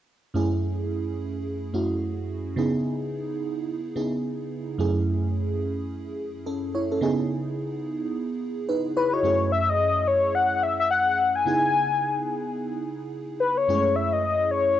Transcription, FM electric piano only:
0.34 1.70 F#2 medium
0.34 1.70 A3 medium
0.34 1.71 C#4 medium
0.34 1.71 E4 medium
0.34 1.71 G#4 medium
1.73 2.57 F#2 medium
1.73 2.57 A3 soft
1.73 2.57 C#4 soft
1.73 2.57 E4 medium
1.73 2.57 F#4 medium
2.56 3.92 C#3 medium
2.56 3.93 B3 medium
2.56 3.93 D#4 medium
2.56 3.93 E4 medium
2.56 3.94 G#4 medium
3.96 4.79 C#3 medium
3.96 4.79 B3 medium
3.96 4.79 D#4 soft
3.96 4.79 E4 soft
3.96 4.79 G#4 medium
4.78 6.97 F#2 medium
4.78 6.97 A3 medium
4.78 6.42 C#4 medium
4.78 6.43 E4 medium
4.78 6.43 G#4 medium
6.46 6.73 C#4 medium
6.46 6.72 A4 medium
6.75 6.90 E4 medium
6.75 6.90 C#5 medium
6.92 7.17 C#4 soft
6.92 7.17 A4 medium
7.01 9.19 C#3 medium
7.01 9.19 B3 medium
7.01 8.65 D#4 medium
7.01 8.65 E4 medium
7.01 8.65 G#4 medium
8.69 8.95 D#4 medium
8.69 8.95 B4 medium
8.97 9.12 E4 medium
8.97 9.12 C#5 medium
9.13 9.39 F#4 soft
9.13 9.39 D#5 medium
9.23 11.41 F#2 medium
9.23 11.42 A3 medium
9.23 11.42 C#4 medium
9.23 11.42 E4 medium
9.23 11.42 G#4 medium
11.45 13.64 C#3 medium
11.45 13.64 B3 medium
11.45 13.64 D#4 medium
11.45 13.65 E4 medium
11.45 13.65 G#4 medium
13.68 14.80 F#2 medium
13.68 13.76 G#3 soft
13.68 14.80 C#4 medium
13.68 14.80 E4 medium
13.68 14.80 G#4 medium
13.75 14.80 A3 medium

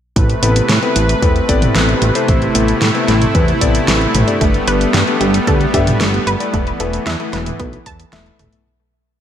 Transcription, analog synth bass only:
0.16 0.35 A1 loud
0.43 0.62 A1 loud
0.70 0.79 A2 loud
0.96 1.15 A1 loud
1.22 1.41 E2 loud
1.49 1.68 A1 medium
1.76 1.95 A1 medium
2.02 2.12 A1 loud
2.29 2.48 A1 medium
2.55 2.74 A1 loud
2.82 2.91 A2 medium
3.08 3.27 A1 loud
3.35 3.54 E2 loud
3.61 3.80 A1 loud
3.88 4.07 A1 medium
4.15 4.24 A1 loud
4.41 4.60 G1 loud
4.68 4.87 G1 loud
4.94 5.04 G2 medium
5.21 5.40 G1 loud
5.47 5.66 D2 loud
5.74 5.93 G1 loud
6.01 6.19 G1 medium
6.27 6.36 G1 loud
6.54 6.73 E1 loud
6.80 6.99 E1 loud
7.07 7.16 E2 medium
7.33 7.52 E1 loud
7.60 7.79 B1 loud
7.86 8.05 E2 medium
8.13 8.32 E1 medium
8.39 8.49 E1 medium

